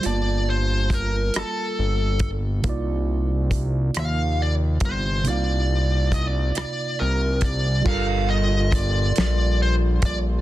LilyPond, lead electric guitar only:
\new Staff \with { instrumentName = "Lead electric guitar" } { \time 6/8 \key g \minor \tempo 4. = 46 d''8 c''8 bes'8 a'4 r8 | r4. f''8 d''8 c''8 | d''4 ees''8 d''8 bes'8 d''8 | f''8 ees''8 d''4 c''8 d''8 | }